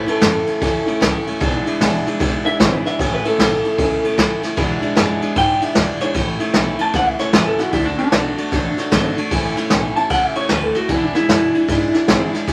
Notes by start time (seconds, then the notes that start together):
0.06 A3 C#4 E4 A4, muted upright bass stroke, ride
0.21 F#2 A2 E3 A3 C#4 E4, snare, ride
0.47 A3 C#4 E4, muted upright bass stroke, ride
0.60 E2 E3 A3 C#4 E4, kick, ride
0.86 A3 C#4 E4, ride
1.00 C#2 A2 E3 A3 C#4 E4, kick, snare, ride
1.26 A3 C#4 E4, muted upright bass stroke, ride
1.40 B1 E2 B2 E3 G#3 D4 E4, kick, ride
1.66 E3 G#3 D4 E4, muted upright bass stroke, ride
1.80 A1 E2 B2 E3 G#3 D4 E4, snare, ride
2.05 E3 G#3 D4 E4, muted upright bass stroke, ride
2.19 B1 E3 G#3 D4 E4, kick, ride
2.45 E3 G#3 D4 E4 E5, ride
2.59 G#1 E2 B2 E3 G#3 D4 E4 C#5, kick, snare, ride
2.73 B4
2.85 E3 G#3 D4 E4 E5, muted upright bass stroke, snare, ride
2.99 A1 A2 E3 A3 C#4 E4 C#5, kick, ride
3.13 B4
3.25 A3 C#4 E4 A4, ride
3.38 B1 A2 E3 A3 C#4 E4, snare, ride
3.64 A3 C#4 E4, ride
3.78 C#2 E3 A3 C#4 E4, kick, ride
4.03 A3 C#4 E4, muted upright bass stroke, ride
4.17 D2 A2 E3 A3 C#4 E4, kick, snare, ride
4.43 A3 C#4 E4, muted upright bass stroke, snare, ride
4.56 E2 B2 E3 G#3 D4 E4, kick, ride
4.81 E3 G#3 D4 E4, muted upright bass stroke, ride
4.96 E2 F#2 B2 E3 G#3 D4 E4, snare, ride
5.21 E3 G#3 D4 E4, muted upright bass stroke, ride
5.35 G#2 E3 G#3 D4 E4 G5, kick, ride
5.61 E3 G#3 D4 E4 E5, muted upright bass stroke, ride
5.75 E2 B2 E3 G#3 D4 E4 D5, kick, snare, ride
6.00 E3 G#3 D4 E4 C#5, muted upright bass stroke, snare, ride
6.14 A1 A2 E3 A3 C#4 E4, kick, ride
6.40 A3 C#4 E4, muted upright bass stroke, ride
6.54 B1 A2 E3 A3 C#4 E4, snare, ride
6.78 A3 C#4 E4 A5, muted upright bass stroke, ride
6.93 C#2 E3 A3 C#4 E4 F#5, kick, snare, ride
7.07 E5
7.19 A3 C#4 E4 C#5, muted upright bass stroke, snare, ride
7.33 E2 A2 E3 A3 C#4 E4 B4, snare, ride
7.46 A4
7.58 A3 C#4 E4 F#4, muted upright bass stroke, snare, ride
7.71 D2 D3 A3 D4 E4 F#4, kick, ride
7.85 D4
7.98 A3 D4 F#4, muted upright bass stroke, ride
8.12 B1 D3 A3 D4 F#4, snare, ride
8.37 A3 D4 F#4, muted upright bass stroke, ride
8.51 A1 D3 A3 D4 F#4, kick, snare, ride
8.77 A3 D4 F#4, muted upright bass stroke, snare, ride
8.91 G#1 D3 A3 D4 F#4, kick, snare, ride
9.17 A3 D4 F#4, muted upright bass stroke, ride
9.31 A1 A2 E3 A3 C#4 E4, kick, ride
9.57 A3 C#4 E4, muted upright bass stroke, snare, ride
9.70 B1 A2 E3 A3 C#4 E4, snare, ride
9.96 A3 C#4 E4 A5, ride
10.10 C#2 E3 A3 C#4 E4 F#5, kick, snare, ride
10.24 E5
10.35 A3 C#4 E4 C#5, muted upright bass stroke, ride
10.49 D2 A2 E3 A3 C#4 E4 B4, snare, ride
10.63 A4
10.75 A3 C#4 E4 F#4, muted upright bass stroke, snare, ride
10.89 E2 B2 E3 G#3 D4 E4, kick, ride
11.04 D4
11.14 E3 G#3 D4 E4, muted upright bass stroke, snare, ride
11.28 E2 F#2 B2 E3 G#3 D4 E4, snare, ride
11.53 E3 G#3 D4 E4, muted upright bass stroke, ride
11.68 G#2 E3 G#3 D4 E4, kick, ride
11.93 E3 G#3 D4 E4, muted upright bass stroke, snare, ride
12.08 G#1 E2 B2 E3 G#3 D4 E4, kick, snare, ride
12.33 E3 G#3 D4 E4, muted upright bass stroke, snare, ride
12.48 A1 A2 E3 A3 C#4 E4, kick, ride